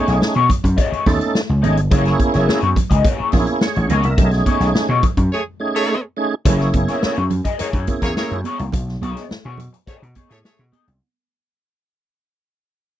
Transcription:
Already playing: clean electric guitar A3 D#4 G#4 C#5, tonewheel organ A3 C#4 D#4 G#4
0.07 slap bass B1, snare, closed hi-hat
0.21 muted clean electric guitar stroke, muted slap bass stroke, snare, muted conga
0.35 slap bass B2, clean electric guitar A3 D#4 G#4 C#5, closed hi-hat, high conga
0.49 muted clean electric guitar stroke, kick, closed hi-hat, muted conga, low conga
0.64 slap bass F#2, muted clean electric guitar stroke, kick, closed hi-hat
0.76 clean electric guitar A3 D#4 G#4 C#5, kick, closed hi-hat, muted conga
0.92 muted slap bass stroke, closed hi-hat
1.06 slap bass D#2, tonewheel organ A3 C#4 D#4 A4, muted clean electric guitar stroke, kick, snare, open hi-hat, muted conga, high conga
1.20 muted clean electric guitar stroke, closed hi-hat
1.33 muted clean electric guitar stroke, snare, muted conga
1.49 slap bass C#2
1.62 slap bass G#1, clean electric guitar A3 D#4 G#4 D#5, tonewheel organ A3 C#4 D#4 G#4, closed hi-hat, muted conga, high conga, low conga
1.77 slap bass G1, muted clean electric guitar stroke, closed hi-hat
1.91 slap bass F#1, clean electric guitar A#3 E4 G#4 C#5, tonewheel organ A#3 C#4 E4 G#4, kick, closed hi-hat, low conga
2.05 snare, closed hi-hat
2.19 muted clean electric guitar stroke, kick, closed hi-hat, high conga
2.34 slap bass F#1, clean electric guitar A#3 E4 G#4 C#5, snare, closed hi-hat
2.48 clean electric guitar A#3 E4 G#4 C#5, muted slap bass stroke, snare, muted conga
2.62 slap bass F#2, closed hi-hat, high conga
2.76 muted clean electric guitar stroke, kick, closed hi-hat, muted conga, low conga
2.90 slap bass C#2, clean electric guitar A#3 E4 G#4 D#5, kick, closed hi-hat
3.04 clean electric guitar A#3 E4 G#4 C#5, kick, closed hi-hat, muted conga
3.20 muted slap bass stroke
3.32 slap bass A#1, tonewheel organ A#3 C#4 E4 G#4, muted clean electric guitar stroke, kick, snare, open hi-hat, muted conga, high conga
3.47 muted clean electric guitar stroke, closed hi-hat
3.61 tonewheel organ G#4 C#5, muted clean electric guitar stroke, snare, muted conga
3.76 slap bass A1, muted clean electric guitar stroke, closed hi-hat
3.90 slap bass C#2, clean electric guitar A#3 E4 G#4 C#5, tonewheel organ A#4 D#5, closed hi-hat, muted conga, high conga, low conga
4.03 slap bass C2, tonewheel organ A#4 E5, muted clean electric guitar stroke, closed hi-hat
4.17 slap bass B1, tonewheel organ A3 C#4 D#4 G4, kick, closed hi-hat, low conga
4.25 tonewheel organ G#4
4.31 snare, closed hi-hat
4.46 clean electric guitar A3 D#4 G#4 C#5, kick, closed hi-hat, muted conga, high conga
4.60 slap bass B1, snare, closed hi-hat
4.74 muted slap bass stroke, muted clean electric guitar stroke, snare
4.89 slap bass B2, clean electric guitar A3 D#4 G#4 C#5, high conga
5.03 muted clean electric guitar stroke, kick, closed hi-hat, muted conga, low conga
5.17 slap bass F#2, muted clean electric guitar stroke, kick, closed hi-hat
5.32 horn section A3 G#4 C#5
5.60 tonewheel organ A3 C#4 D#4 G#4
5.75 horn section A3 G#4 C#5
6.17 tonewheel organ A3 C#4 D#4 G#4
6.45 slap bass F#1, tonewheel organ A3 C#4 E4 G#4, clean electric guitar A#3 E4 G#4 C#5, kick, closed hi-hat, low conga
6.52 tonewheel organ A#3
6.60 snare
6.73 slap bass F#1, muted clean electric guitar stroke, kick, closed hi-hat, muted conga, high conga
6.88 clean electric guitar A#3 E4 G#4 C#5, snare, closed hi-hat
7.01 clean electric guitar A#3 E4 G#4 C#5, muted slap bass stroke, snare
7.16 slap bass F#2, closed hi-hat
7.30 muted clean electric guitar stroke, closed hi-hat, low conga
7.45 clean electric guitar A#3 E4 G#4 D#5, kick, closed hi-hat
7.58 clean electric guitar A#3 E4 G#4 C#5, horn section A#3 G#4 C#5, muted slap bass stroke, closed hi-hat
7.73 slap bass F#2, kick, closed hi-hat
7.87 tonewheel organ A#3 C#4 E4 G#4, muted clean electric guitar stroke, kick, closed hi-hat, high conga
8.02 slap bass E2, horn section A#3 G#4 C#5, muted clean electric guitar stroke, kick, closed hi-hat
8.16 horn section A#3 G#4 C#5, muted clean electric guitar stroke, snare, muted conga
8.31 slap bass F#2, muted clean electric guitar stroke, closed hi-hat
8.44 clean electric guitar A#3 E4 G#4 C#5, closed hi-hat, high conga
8.59 slap bass C2, muted clean electric guitar stroke, closed hi-hat
8.72 slap bass B1, kick, closed hi-hat, low conga
8.88 snare
9.02 slap bass B1, clean electric guitar A3 D#4 G#4 C#5, closed hi-hat, muted conga, high conga
9.17 snare, closed hi-hat
9.29 muted slap bass stroke, muted clean electric guitar stroke, snare, muted conga
9.45 slap bass B2, clean electric guitar A3 D#4 G#4 C#5
9.58 muted clean electric guitar stroke, closed hi-hat, muted conga, low conga
9.73 muted clean electric guitar stroke, closed hi-hat
9.86 clean electric guitar A3 D#4 G#4 C#5, horn section A3 G#4 C#5, muted slap bass stroke, kick, closed hi-hat
10.02 slap bass B2, muted clean electric guitar stroke, closed hi-hat
10.15 clean electric guitar A3 D#4 G#4 C#5, kick, closed hi-hat, muted conga, high conga
10.29 slap bass A2, horn section A3 G#4 C#5, muted clean electric guitar stroke, closed hi-hat
10.44 horn section A3 G#4 C#5, muted clean electric guitar stroke, snare
10.59 slap bass B2
10.72 clean electric guitar A3 D#4 G#4 D#5, closed hi-hat, muted conga, high conga
10.88 slap bass C2, closed hi-hat

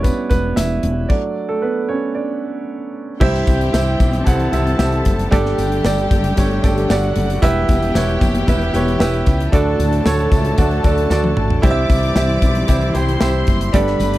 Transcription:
Already playing: fretless electric bass E1, grand piano G3 B3 C#4 D4 E4 B4 C#5 D5
0.03 grand piano B3 B4, kick, closed hi-hat, tambourine
0.29 fretless electric bass E1, grand piano B3 B4, kick, closed hi-hat, tambourine
0.56 fretless electric bass E1, grand piano E4 E5, snare, closed hi-hat, tambourine
0.83 fretless electric bass E1, closed hi-hat
1.09 grand piano F#3 A3 D4 D5, kick, crash
1.49 grand piano A3 A4
1.62 grand piano B3 B4
1.89 grand piano C#4 C#5
2.15 grand piano D4 D5
3.20 fretless electric bass C2, grand piano G2 E4 G4 C5 E5, string section E3 G3 C4, violin section G4 G5, kick, crash, tambourine
3.34 snare
3.47 fretless electric bass C2, kick, closed hi-hat, tambourine
3.61 closed hi-hat
3.73 fretless electric bass C2, grand piano E4 G4 C5 E5, snare, tambourine
4.00 fretless electric bass B1, kick, closed hi-hat, tambourine
4.13 closed hi-hat
4.25 fretless electric bass C2, grand piano E4 G4 C5 F#5, violin section A4 A5, kick, closed hi-hat, tambourine
4.40 closed hi-hat
4.52 fretless electric bass C2, grand piano E4 G4 C5 E5, closed hi-hat, tambourine
4.67 closed hi-hat
4.78 fretless electric bass C2, grand piano E4 G4 C5 E5, snare, tambourine
4.92 closed hi-hat
5.05 fretless electric bass F#1, kick, closed hi-hat, tambourine
5.19 closed hi-hat
5.31 fretless electric bass G1, grand piano G2 D3 D4 G4 A4 D5, string section D3 A3, violin section G4 G5, kick, closed hi-hat, tambourine
5.46 snare
5.58 fretless electric bass G1, closed hi-hat, tambourine
5.72 closed hi-hat
5.84 fretless electric bass G1, grand piano D4 G4 A4 D5, snare, tambourine
5.98 closed hi-hat
6.11 fretless electric bass F#1, kick, closed hi-hat, tambourine
6.24 closed hi-hat
6.36 fretless electric bass G1, grand piano D4 G4 A4 C#5, kick, closed hi-hat, tambourine
6.51 closed hi-hat
6.62 fretless electric bass G1, grand piano D4 G4 A4 D5, kick, closed hi-hat, tambourine
6.78 closed hi-hat
6.89 fretless electric bass G1, grand piano D4 G4 A4 D5, violin section F#4 F#5, snare, tambourine
7.03 closed hi-hat
7.16 fretless electric bass F#1, closed hi-hat
7.30 closed hi-hat
7.42 fretless electric bass E1, grand piano B2 E4 G4 B4 E5, string section E3 B3, violin section G4 G5, kick, closed hi-hat, tambourine
7.68 fretless electric bass E1, kick, closed hi-hat, tambourine
7.83 closed hi-hat
7.94 fretless electric bass E1, grand piano E4 G4 B4 C#5, snare, tambourine
8.09 closed hi-hat
8.21 fretless electric bass F#1, kick, closed hi-hat, tambourine
8.35 closed hi-hat
8.47 fretless electric bass E1, grand piano E4 G4 B4 E5, kick, closed hi-hat, tambourine
8.61 closed hi-hat
8.73 fretless electric bass E1, grand piano E4 G4 B4 C#5, closed hi-hat, tambourine
8.88 closed hi-hat
8.99 fretless electric bass E1, grand piano E4 G4 B4 E5, snare, tambourine
9.14 closed hi-hat
9.26 fretless electric bass C#2, kick, closed hi-hat, tambourine
9.40 closed hi-hat
9.52 fretless electric bass D2, grand piano A2 D4 F#4 A4 D5, string section D3 F#3 A3, violin section A4 A5, kick, closed hi-hat, tambourine
9.79 fretless electric bass D2, closed hi-hat, tambourine
9.93 closed hi-hat
10.04 fretless electric bass D2, grand piano D4 F#4 A4 C#5, snare, tambourine
10.19 closed hi-hat
10.32 fretless electric bass C#2, grand piano E5, kick, closed hi-hat, tambourine
10.45 closed hi-hat
10.58 fretless electric bass D2, grand piano D4 F#4 A4 D5 F#5, kick, closed hi-hat, tambourine
10.71 closed hi-hat
10.84 fretless electric bass D2, grand piano D4 F#4 A4 D5, kick, closed hi-hat, tambourine
10.98 closed hi-hat
11.10 fretless electric bass D2, grand piano D4 F#4 A4 D5 A5, snare, tambourine
11.24 high tom
11.37 fretless electric bass A1, mid tom
11.50 floor tom
11.62 fretless electric bass C2, grand piano G2 E4 G4 C5 D5, string section E3 G3 C4, violin section D5 D6, kick, closed hi-hat, tambourine
11.71 grand piano E5
11.89 fretless electric bass C2, kick, closed hi-hat, tambourine
12.03 closed hi-hat
12.15 fretless electric bass C2, grand piano E4 G4 C5 E5, snare, tambourine
12.29 closed hi-hat
12.42 fretless electric bass B1, kick, closed hi-hat, tambourine
12.55 closed hi-hat
12.67 fretless electric bass C2, grand piano E4 G4 C5 E5, kick, closed hi-hat, tambourine
12.81 closed hi-hat
12.94 fretless electric bass C2, grand piano E4 G4 C5 G5, violin section C5 C6, closed hi-hat, tambourine
13.09 closed hi-hat
13.20 fretless electric bass C2, grand piano E4 G4 C5 E5, snare, tambourine
13.47 fretless electric bass F#1, kick, closed hi-hat, tambourine
13.61 closed hi-hat
13.73 fretless electric bass G1, grand piano G2 D3 D4 G4 A4 D5, string section D3 G3 A3, violin section B4 B5, kick, closed hi-hat
13.87 snare, closed hi-hat
13.99 fretless electric bass G1, closed hi-hat, tambourine
14.14 closed hi-hat

